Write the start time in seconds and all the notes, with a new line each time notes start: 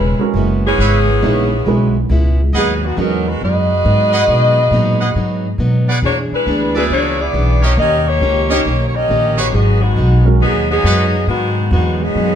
Already playing: E1 C#3 G#3 B3 C#4 E4 B4
0.19 G#3 C#4 F#4 A#4, muted upright bass stroke
0.34 F#1 C#3 G#3 B3 E4
0.66 E3 B3 C#4 G#4
0.78 G#1 C#3 G#3 B3 E4 G#4 B4 C#5 E5
1.22 A#1 C#3 G#3 A#3 B3 D#4 E4 G#4 C#5
1.66 B1 C#3 G#3 B3 C#4 E4 F#4 B4
2.09 C#2 C#3 G#3 B3 E4
2.53 D#2 G#2 F#3 B3 D#4 G#4 B4 D#5 F#5
2.85 D#3 G#3 B3 F#4
2.97 E2 G#2 F#3 G#3 B3 C#4 D#4 F#4 A#4
3.27 G#3 D#4 F#4 B4
3.41 F#2 G#2 F#3 B3 D#4 F#4 G#4 B4 D#5
3.84 G#2 F#3 B3 D#4
4.12 G#4 B4 D#5 F#5
4.27 G#2 B2 F#3 B3 D#4
4.71 G#2 A#2 F#3 B3 D#4
5.00 G#4 B4 D#5 F#5
5.15 G#2 F#3 B3 D#4
5.58 G#2 B2 F#3 B3 D#4
5.87 G#4 B4 D5 F#5
6.02 E2 E3 A#3 B3 D4 F#4 G#4 C#5
6.31 G#3 D4 E4 B4, muted upright bass stroke
6.46 D2 E3 B3 D4 G#4
6.74 F#3 G#3 B3 D4 E4 G#4 B4 D5 E5
6.89 C#2 E3 A#3 B3 D4 F#4 G#4 C#5
7.20 B3 E4 G#4 D5
7.33 B1 E3 B3 D4 G#4
7.62 A#3 D4 F#4 G4 A#4 C#5 D#5
7.77 D#2 D#3 A#3 C#4 G4 A#4 D#5
8.08 A#3 D#4 G4 C#5
8.20 C#2 D#3 A#3 C#4 G4
8.49 A#3 C#4 D#4 G4 A#4 C#5 D#5
8.65 B1 D#3 A#3 C#4 G4
8.87 C#5
8.94 C#4 G4 A#4 D#5
9.08 A#1 D#3 A#3 C#4 G4
9.37 A#3 D#4 F#4 G4 G#4 B4 C#5
9.52 G#1 G#2 F#3 B3 D#4 G#4
9.82 D#3 G#3 B3 F#4
9.96 B1 G#2 F#3 B3 D#4
10.25 G#3 C#4 F#4 A#4
10.40 D#2 G#2 F#3 B3 D#4 G#4
10.71 F#3 B3 D#4 G#4
10.83 F#2 G#2 F#3 B3 D#4 F#4 G#4 B4 D#5
11.27 G#2 D#3 F#3 G#3 B3 D#4 F#4
11.71 E2 G#2 D#3 F#3 G#3 B3 D#4 F#4
11.99 B2 D#3 F#3 G#3 B3 D#4 G#4
12.15 F#2 G#2 F#3 B3 D#4